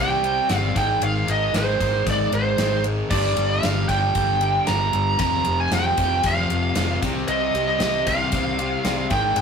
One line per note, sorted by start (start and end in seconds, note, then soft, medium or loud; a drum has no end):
0.00 0.40 C2 loud
0.00 0.23 C3 loud
0.00 0.74 C3 medium
0.00 0.23 G3 loud
0.00 0.74 G3 medium
0.00 0.24 C4 loud
0.00 0.74 C4 medium
0.00 0.56 G5 loud
0.24 0.49 C3 medium
0.24 0.49 G3 medium
0.24 0.50 C4 medium
0.24 ride medium
0.49 0.71 G1 medium
0.49 0.74 C3 medium
0.49 0.74 G3 medium
0.49 0.75 C4 medium
0.49 snare loud
0.49 ride loud
0.56 0.76 F5 loud
0.75 0.97 G#1 loud
0.75 1.01 G#2 loud
0.75 1.02 D#3 loud
0.75 1.03 G#3 loud
0.75 1.01 G5 loud
0.75 kick loud
0.75 ride medium
1.02 1.23 G#1 loud
1.02 1.27 G#2 loud
1.02 1.28 D#3 loud
1.02 1.28 G#3 loud
1.02 1.30 F5 medium
1.02 ride loud
1.27 1.49 G#1 medium
1.27 1.53 G#2 medium
1.27 1.53 D#3 medium
1.27 1.53 G#3 loud
1.27 1.54 D#5 medium
1.27 ride medium
1.54 1.75 G#1 medium
1.54 1.78 G#2 medium
1.54 1.79 D#3 loud
1.54 1.79 G#3 medium
1.54 2.04 C5 medium
1.54 snare loud
1.54 ride loud
1.79 2.02 G#1 loud
1.79 2.04 G#2 medium
1.79 2.05 D#3 medium
1.79 2.05 G#3 medium
1.79 kick medium
1.79 ride medium
2.06 2.28 G#1 medium
2.06 2.30 G#2 medium
2.06 2.31 D#3 loud
2.06 2.32 G#3 loud
2.06 kick loud
2.06 ride loud
2.10 2.34 D5 medium
2.31 2.53 G#1 medium
2.31 2.56 G#2 medium
2.31 2.57 D#3 medium
2.31 2.57 G#3 medium
2.31 2.82 C5 medium
2.31 ride medium
2.57 3.01 G#1 loud
2.57 2.82 G#2 medium
2.57 2.83 D#3 medium
2.57 2.83 G#3 medium
2.57 snare loud
2.57 ride loud
2.83 3.09 G#2 medium
2.83 3.09 D#3 medium
2.83 3.09 G#3 medium
2.83 ride medium
3.10 3.32 G1 loud
3.10 3.35 G2 loud
3.10 3.36 D3 loud
3.10 3.36 G3 loud
3.10 3.51 D5 medium
3.10 kick loud
3.10 crash loud
3.36 3.58 G1 loud
3.36 3.62 G2 medium
3.36 3.63 D3 medium
3.36 3.64 G3 loud
3.36 ride medium
3.50 3.88 F5 medium
3.63 3.85 G1 loud
3.63 3.88 G2 medium
3.63 3.88 D3 medium
3.63 3.88 G3 loud
3.63 snare loud
3.63 ride loud
3.89 4.10 G1 medium
3.89 4.13 G2 medium
3.89 4.14 D3 medium
3.89 4.14 G3 loud
3.89 4.70 G5 loud
3.89 kick medium
3.89 ride medium
4.14 4.58 G1 medium
4.14 4.40 G2 loud
4.14 4.40 D3 loud
4.14 4.40 G3 loud
4.14 kick loud
4.14 ride loud
4.41 4.65 G2 medium
4.41 4.66 D3 medium
4.41 4.66 G3 medium
4.41 ride medium
4.66 4.89 G1 loud
4.66 4.91 G2 medium
4.66 4.92 D3 medium
4.66 4.93 G3 medium
4.66 5.19 A#5 loud
4.66 snare loud
4.66 ride loud
4.93 5.15 G1 medium
4.93 5.18 G2 medium
4.93 5.18 D3 medium
4.93 5.18 G3 loud
4.93 ride medium
5.19 5.41 F1 loud
5.19 5.44 F2 loud
5.19 5.45 C3 loud
5.19 5.46 F3 loud
5.19 5.60 A#5 medium
5.19 kick loud
5.19 ride loud
5.45 5.67 F1 medium
5.45 5.70 F2 medium
5.45 5.71 C3 loud
5.45 5.71 F3 medium
5.45 ride medium
5.60 5.72 G#5 medium
5.71 5.93 F1 medium
5.71 5.96 F2 medium
5.71 5.97 C3 medium
5.71 5.97 F3 loud
5.71 6.27 G5 medium
5.71 snare loud
5.71 ride loud
5.97 6.19 F1 medium
5.97 6.22 F2 medium
5.97 6.23 C3 medium
5.97 6.24 F3 loud
5.97 kick loud
5.97 ride medium
6.23 6.45 F1 medium
6.23 6.49 F2 medium
6.23 6.49 C3 loud
6.23 6.50 F3 loud
6.23 6.99 F5 medium
6.23 kick loud
6.23 ride loud
6.50 6.71 F1 medium
6.50 6.74 F2 medium
6.50 6.75 C3 medium
6.50 6.75 F3 medium
6.50 ride medium
6.75 6.97 F1 loud
6.75 7.00 F2 medium
6.75 7.00 C3 medium
6.75 7.01 F3 medium
6.75 snare loud
6.75 ride loud
7.02 7.24 C2 medium
7.02 7.27 C3 loud
7.02 7.28 G3 loud
7.02 7.30 C4 loud
7.02 kick loud
7.02 ride medium
7.28 7.50 C2 loud
7.28 7.53 C3 medium
7.28 7.53 G3 loud
7.28 7.55 C4 loud
7.28 7.66 D#5 medium
7.28 ride loud
7.54 7.75 C2 loud
7.54 7.79 C3 medium
7.54 7.79 G3 medium
7.54 7.80 C4 loud
7.54 ride medium
7.67 8.04 D#5 medium
7.80 8.02 C2 loud
7.80 8.05 C3 loud
7.80 8.06 G3 loud
7.80 8.08 C4 medium
7.80 snare loud
7.80 ride loud
8.07 8.28 C2 loud
8.07 8.31 C3 medium
8.07 8.32 G3 medium
8.07 8.32 C4 medium
8.07 9.08 F5 loud
8.07 kick medium
8.07 ride medium
8.32 8.75 C2 loud
8.32 8.57 C3 medium
8.32 8.58 G3 loud
8.32 8.58 C4 loud
8.32 kick loud
8.32 ride loud
8.58 8.83 C3 medium
8.58 8.83 G3 medium
8.58 8.84 C4 medium
8.58 ride medium
8.84 9.06 C2 loud
8.84 9.09 C3 medium
8.84 9.09 G3 medium
8.84 9.09 C4 loud
8.84 snare loud
8.84 ride medium
9.10 9.32 G#1 medium
9.10 9.36 G#2 loud
9.10 9.37 D#3 loud
9.10 9.37 G#3 loud
9.10 9.36 G5 loud
9.10 kick loud
9.10 ride medium
9.36 9.41 G#1 loud
9.36 9.41 G#2 loud
9.36 9.41 D#3 loud
9.36 9.41 G#3 loud
9.36 9.41 G5 loud
9.36 ride loud